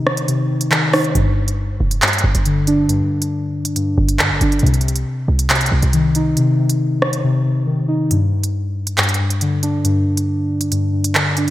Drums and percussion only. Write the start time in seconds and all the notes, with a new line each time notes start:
0.07 cross-stick
0.17 closed hi-hat
0.28 closed hi-hat
0.61 closed hi-hat
0.72 clap
0.93 cross-stick, open hi-hat
1.04 closed hi-hat
1.15 closed hi-hat
1.48 closed hi-hat
1.91 closed hi-hat
2.02 clap, closed hi-hat
2.08 closed hi-hat
2.13 closed hi-hat
2.18 closed hi-hat
2.35 closed hi-hat
2.46 closed hi-hat
2.67 closed hi-hat
2.89 closed hi-hat
3.22 closed hi-hat
3.65 closed hi-hat
3.76 closed hi-hat
4.09 closed hi-hat
4.19 clap
4.41 closed hi-hat
4.52 closed hi-hat
4.59 closed hi-hat
4.67 closed hi-hat
4.74 closed hi-hat
4.81 closed hi-hat
4.88 closed hi-hat
4.96 closed hi-hat
5.39 closed hi-hat
5.50 clap, closed hi-hat
5.55 closed hi-hat
5.61 closed hi-hat
5.66 closed hi-hat
5.82 closed hi-hat
5.93 closed hi-hat
6.15 closed hi-hat
6.37 closed hi-hat
6.70 closed hi-hat
7.02 cross-stick
7.13 closed hi-hat
8.11 closed hi-hat
8.44 closed hi-hat
8.87 closed hi-hat
8.98 clap, closed hi-hat
9.03 closed hi-hat
9.09 closed hi-hat
9.14 closed hi-hat
9.30 closed hi-hat
9.41 closed hi-hat
9.63 closed hi-hat
9.85 closed hi-hat
10.17 closed hi-hat
10.61 closed hi-hat
10.72 closed hi-hat
11.04 closed hi-hat
11.15 clap
11.37 closed hi-hat